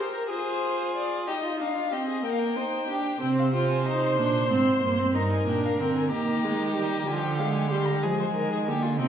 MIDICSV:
0, 0, Header, 1, 5, 480
1, 0, Start_track
1, 0, Tempo, 643777
1, 2395, Time_signature, 12, 3, 24, 8
1, 6770, End_track
2, 0, Start_track
2, 0, Title_t, "Violin"
2, 0, Program_c, 0, 40
2, 0, Note_on_c, 0, 70, 93
2, 228, Note_off_c, 0, 70, 0
2, 236, Note_on_c, 0, 72, 95
2, 701, Note_off_c, 0, 72, 0
2, 709, Note_on_c, 0, 74, 94
2, 944, Note_off_c, 0, 74, 0
2, 951, Note_on_c, 0, 75, 77
2, 1186, Note_off_c, 0, 75, 0
2, 1192, Note_on_c, 0, 77, 91
2, 1435, Note_on_c, 0, 75, 80
2, 1446, Note_off_c, 0, 77, 0
2, 1669, Note_off_c, 0, 75, 0
2, 1674, Note_on_c, 0, 79, 88
2, 1725, Note_on_c, 0, 77, 74
2, 1733, Note_off_c, 0, 79, 0
2, 1780, Note_on_c, 0, 79, 90
2, 1791, Note_off_c, 0, 77, 0
2, 2391, Note_off_c, 0, 79, 0
2, 2395, Note_on_c, 0, 79, 77
2, 2444, Note_off_c, 0, 79, 0
2, 2523, Note_on_c, 0, 77, 72
2, 2571, Note_off_c, 0, 77, 0
2, 2640, Note_on_c, 0, 79, 76
2, 2755, Note_off_c, 0, 79, 0
2, 2760, Note_on_c, 0, 80, 64
2, 2877, Note_on_c, 0, 82, 71
2, 2888, Note_off_c, 0, 80, 0
2, 2995, Note_off_c, 0, 82, 0
2, 2999, Note_on_c, 0, 84, 93
2, 3822, Note_off_c, 0, 84, 0
2, 3845, Note_on_c, 0, 82, 73
2, 3961, Note_off_c, 0, 82, 0
2, 3968, Note_on_c, 0, 80, 64
2, 4089, Note_on_c, 0, 79, 70
2, 4101, Note_off_c, 0, 80, 0
2, 4206, Note_off_c, 0, 79, 0
2, 4213, Note_on_c, 0, 77, 66
2, 4258, Note_off_c, 0, 77, 0
2, 4327, Note_on_c, 0, 79, 67
2, 4437, Note_off_c, 0, 79, 0
2, 4441, Note_on_c, 0, 80, 71
2, 4555, Note_off_c, 0, 80, 0
2, 4559, Note_on_c, 0, 82, 81
2, 5270, Note_on_c, 0, 80, 76
2, 5281, Note_off_c, 0, 82, 0
2, 5381, Note_off_c, 0, 80, 0
2, 5385, Note_on_c, 0, 79, 77
2, 5434, Note_off_c, 0, 79, 0
2, 5502, Note_on_c, 0, 77, 69
2, 5614, Note_off_c, 0, 77, 0
2, 5619, Note_on_c, 0, 80, 74
2, 5739, Note_off_c, 0, 80, 0
2, 5743, Note_on_c, 0, 84, 79
2, 5860, Note_on_c, 0, 82, 76
2, 5871, Note_off_c, 0, 84, 0
2, 5984, Note_on_c, 0, 80, 83
2, 5995, Note_off_c, 0, 82, 0
2, 6698, Note_off_c, 0, 80, 0
2, 6702, Note_on_c, 0, 79, 73
2, 6770, Note_off_c, 0, 79, 0
2, 6770, End_track
3, 0, Start_track
3, 0, Title_t, "Violin"
3, 0, Program_c, 1, 40
3, 0, Note_on_c, 1, 72, 79
3, 96, Note_off_c, 1, 72, 0
3, 100, Note_on_c, 1, 70, 81
3, 220, Note_off_c, 1, 70, 0
3, 225, Note_on_c, 1, 68, 77
3, 932, Note_off_c, 1, 68, 0
3, 949, Note_on_c, 1, 67, 83
3, 997, Note_off_c, 1, 67, 0
3, 1072, Note_on_c, 1, 65, 70
3, 1188, Note_off_c, 1, 65, 0
3, 1194, Note_on_c, 1, 63, 75
3, 1306, Note_off_c, 1, 63, 0
3, 1310, Note_on_c, 1, 65, 69
3, 1423, Note_off_c, 1, 65, 0
3, 1427, Note_on_c, 1, 67, 62
3, 1544, Note_off_c, 1, 67, 0
3, 1548, Note_on_c, 1, 68, 67
3, 1667, Note_off_c, 1, 68, 0
3, 1671, Note_on_c, 1, 70, 76
3, 1911, Note_on_c, 1, 72, 68
3, 1922, Note_off_c, 1, 70, 0
3, 2144, Note_off_c, 1, 72, 0
3, 2149, Note_on_c, 1, 67, 74
3, 2388, Note_off_c, 1, 67, 0
3, 2397, Note_on_c, 1, 72, 89
3, 3812, Note_off_c, 1, 72, 0
3, 3840, Note_on_c, 1, 70, 87
3, 4545, Note_off_c, 1, 70, 0
3, 4560, Note_on_c, 1, 67, 89
3, 5986, Note_on_c, 1, 68, 74
3, 5997, Note_off_c, 1, 67, 0
3, 6104, Note_off_c, 1, 68, 0
3, 6108, Note_on_c, 1, 72, 74
3, 6157, Note_off_c, 1, 72, 0
3, 6230, Note_on_c, 1, 70, 72
3, 6347, Note_off_c, 1, 70, 0
3, 6353, Note_on_c, 1, 68, 66
3, 6400, Note_off_c, 1, 68, 0
3, 6473, Note_on_c, 1, 67, 77
3, 6582, Note_on_c, 1, 65, 69
3, 6593, Note_off_c, 1, 67, 0
3, 6702, Note_off_c, 1, 65, 0
3, 6706, Note_on_c, 1, 63, 91
3, 6770, Note_off_c, 1, 63, 0
3, 6770, End_track
4, 0, Start_track
4, 0, Title_t, "Viola"
4, 0, Program_c, 2, 41
4, 0, Note_on_c, 2, 67, 80
4, 223, Note_off_c, 2, 67, 0
4, 227, Note_on_c, 2, 65, 80
4, 948, Note_on_c, 2, 63, 75
4, 960, Note_off_c, 2, 65, 0
4, 1194, Note_on_c, 2, 62, 64
4, 1205, Note_off_c, 2, 63, 0
4, 1432, Note_on_c, 2, 60, 73
4, 1443, Note_off_c, 2, 62, 0
4, 1666, Note_off_c, 2, 60, 0
4, 1671, Note_on_c, 2, 58, 76
4, 1910, Note_on_c, 2, 63, 73
4, 1921, Note_off_c, 2, 58, 0
4, 2145, Note_off_c, 2, 63, 0
4, 2150, Note_on_c, 2, 62, 76
4, 2385, Note_off_c, 2, 62, 0
4, 2389, Note_on_c, 2, 60, 90
4, 2619, Note_off_c, 2, 60, 0
4, 2639, Note_on_c, 2, 65, 91
4, 2874, Note_off_c, 2, 65, 0
4, 2878, Note_on_c, 2, 63, 91
4, 3112, Note_off_c, 2, 63, 0
4, 3116, Note_on_c, 2, 62, 97
4, 3349, Note_off_c, 2, 62, 0
4, 3354, Note_on_c, 2, 60, 89
4, 3592, Note_off_c, 2, 60, 0
4, 3599, Note_on_c, 2, 58, 89
4, 3714, Note_on_c, 2, 60, 87
4, 3725, Note_off_c, 2, 58, 0
4, 3838, Note_on_c, 2, 63, 79
4, 3849, Note_off_c, 2, 60, 0
4, 4080, Note_off_c, 2, 63, 0
4, 4084, Note_on_c, 2, 62, 80
4, 4320, Note_on_c, 2, 60, 88
4, 4331, Note_off_c, 2, 62, 0
4, 4559, Note_off_c, 2, 60, 0
4, 4564, Note_on_c, 2, 58, 86
4, 4797, Note_on_c, 2, 56, 88
4, 4809, Note_off_c, 2, 58, 0
4, 5032, Note_off_c, 2, 56, 0
4, 5036, Note_on_c, 2, 55, 91
4, 5268, Note_off_c, 2, 55, 0
4, 5272, Note_on_c, 2, 53, 93
4, 5510, Note_on_c, 2, 56, 102
4, 5521, Note_off_c, 2, 53, 0
4, 5749, Note_off_c, 2, 56, 0
4, 5753, Note_on_c, 2, 55, 82
4, 5986, Note_on_c, 2, 56, 86
4, 5997, Note_off_c, 2, 55, 0
4, 6464, Note_on_c, 2, 58, 93
4, 6476, Note_off_c, 2, 56, 0
4, 6699, Note_off_c, 2, 58, 0
4, 6703, Note_on_c, 2, 60, 99
4, 6770, Note_off_c, 2, 60, 0
4, 6770, End_track
5, 0, Start_track
5, 0, Title_t, "Cello"
5, 0, Program_c, 3, 42
5, 2393, Note_on_c, 3, 48, 83
5, 3124, Note_on_c, 3, 46, 82
5, 3135, Note_off_c, 3, 48, 0
5, 3362, Note_on_c, 3, 44, 73
5, 3373, Note_off_c, 3, 46, 0
5, 3602, Note_on_c, 3, 43, 71
5, 3613, Note_off_c, 3, 44, 0
5, 3834, Note_off_c, 3, 43, 0
5, 3838, Note_on_c, 3, 43, 86
5, 4072, Note_off_c, 3, 43, 0
5, 4077, Note_on_c, 3, 46, 73
5, 4314, Note_off_c, 3, 46, 0
5, 4318, Note_on_c, 3, 50, 70
5, 4559, Note_on_c, 3, 51, 83
5, 4571, Note_off_c, 3, 50, 0
5, 5265, Note_off_c, 3, 51, 0
5, 5270, Note_on_c, 3, 50, 84
5, 5995, Note_on_c, 3, 53, 76
5, 6006, Note_off_c, 3, 50, 0
5, 6222, Note_off_c, 3, 53, 0
5, 6227, Note_on_c, 3, 51, 75
5, 6470, Note_on_c, 3, 50, 77
5, 6481, Note_off_c, 3, 51, 0
5, 6704, Note_on_c, 3, 48, 87
5, 6715, Note_off_c, 3, 50, 0
5, 6770, Note_off_c, 3, 48, 0
5, 6770, End_track
0, 0, End_of_file